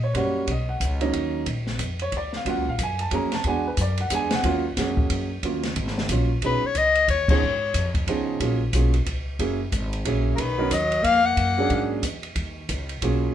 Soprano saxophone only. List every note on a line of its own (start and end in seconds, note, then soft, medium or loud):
6.45 6.67 B4 medium
6.66 6.79 C#5 medium
6.77 7.09 D#5 medium
7.10 7.28 C#5 medium
7.30 7.92 C#5 medium
10.35 10.41 A#4 medium
10.40 10.74 B4 medium
10.72 11.05 D#5 medium
11.04 11.27 F5 loud
11.25 11.91 F#5 medium